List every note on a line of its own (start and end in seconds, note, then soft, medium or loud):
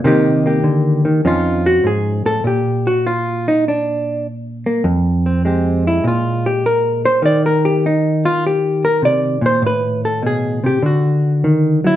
0.04 0.63 C3 medium
0.04 1.04 D#3 medium
0.04 0.45 A#3 medium
0.04 0.47 D#4 medium
0.04 0.46 G4 medium
0.46 1.22 A#3 medium
0.46 1.23 G4 medium
0.64 1.05 D3 medium
1.05 1.24 D#3 medium
1.25 1.83 F2 medium
1.25 2.42 F3 medium
1.25 2.42 C#4 medium
1.25 1.66 D#4 medium
1.25 1.67 F4 medium
1.66 1.85 F#4 loud
1.84 2.25 G#2 medium
1.84 2.26 G#4 medium
2.26 2.44 A2 medium
2.26 2.45 A4 loud
2.44 4.81 A#2 medium
2.44 2.86 G4 medium
2.87 3.05 F#4 medium
3.07 3.46 F4 medium
3.48 3.66 D#4 medium
3.68 4.26 D4 medium
4.66 4.82 A#3 medium
4.84 6.04 F2 medium
5.26 5.44 C4 soft
5.45 7.84 G#3 soft
5.45 5.85 C4 soft
5.45 6.03 G4 soft
5.87 6.05 E4 medium
6.04 7.21 A#2 medium
6.04 6.46 F4 medium
6.46 6.64 G4 medium
6.66 7.05 A#4 medium
7.05 7.24 C5 loud
7.22 11.42 D#3 medium
7.22 7.44 D5 loud
7.46 7.64 A#4 medium
7.65 7.84 G4 medium
7.86 8.25 D#4 medium
8.25 8.44 F4 medium
8.47 8.86 G4 medium
8.85 9.03 A#4 medium
9.02 9.41 C3 medium
9.02 9.45 D5 medium
9.41 9.62 A#2 medium
9.46 9.64 C5 loud
9.62 10.80 A2 medium
9.67 10.05 B4 loud
10.05 10.23 A4 medium
10.22 10.63 B2 medium
10.22 10.65 G#4 medium
10.64 10.82 C3 medium
10.64 10.84 G4 medium
10.82 11.96 D3 medium
10.82 11.44 F#4 medium
11.44 11.84 D#3 medium
11.84 11.96 F#3 medium
11.84 11.96 E4 loud